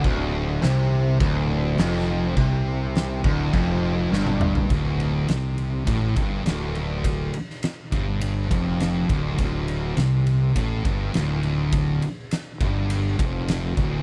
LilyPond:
<<
  \new Staff \with { instrumentName = "Distorted electric guitar" } { \clef bass \time 4/4 \key d \minor \tempo 4 = 103 d,4 c4 d,4 f,4 | c4. d,8 f,4 g,4 | d,4 c4 a,8 g,8 d,4~ | d,8 r4 g,4 f,4 d,8 |
d,4 c4 a,8 g,8 d,4~ | d,8 r4 g,4 f,4 d,8 | }
  \new Staff \with { instrumentName = "Distorted electric guitar" } { \clef bass \time 4/4 \key d \minor d,4 c4 d,4 f,4 | c4. d,8 f,4 g,4 | d,4 c4 a,8 g,8 d,4~ | d,8 r4 g,4 f,4 d,8 |
d,4 c4 a,8 g,8 d,4~ | d,8 r4 g,4 f,4 d,8 | }
  \new Staff \with { instrumentName = "Distorted electric guitar" } { \clef bass \time 4/4 \key d \minor d,4 c4 d,4 f,4 | c4. d,8 f,4 g,4 | r1 | r1 |
r1 | r1 | }
  \new Staff \with { instrumentName = "Fingered electric bass" } { \clef bass \time 4/4 \key d \minor d,,4 c,4 d,,4 f,,4 | c,4. d,,8 f,,4 g,,4 | d,,4 c,4 a,,8 g,,8 d,,4~ | d,,8 r4 g,,4 f,,4 d,,8 |
d,,4 c,4 a,,8 g,,8 d,,4~ | d,,8 r4 g,,4 f,,4 d,,8 | }
  \new DrumStaff \with { instrumentName = "Drums" } \drummode { \time 4/4 <cymc bd>4 <cymc sn>4 <cymc bd>4 <cymc sn>4 | <cymc bd>4 <cymc sn>8 bd8 <cymc bd>4 sn16 tommh16 toml16 tomfh16 | <bd cymr>8 cymr8 <cymr sn>8 cymr8 <bd cymr>8 <bd cymr>8 <cymr sn>8 cymr8 | <bd cymr>8 cymr16 sn16 <cymr sn>8 <bd cymr>8 cymr8 <bd cymr>8 <cymr sn>8 <bd cymr>8 |
<bd cymr>8 cymr8 <cymr sn>8 cymr8 <bd cymr>8 <bd cymr>8 <cymr sn>8 cymr8 | <bd cymr>8 cymr8 <cymr sn>8 <bd cymr>8 cymr8 <bd cymr>8 <cymr sn>8 <bd cymr>8 | }
>>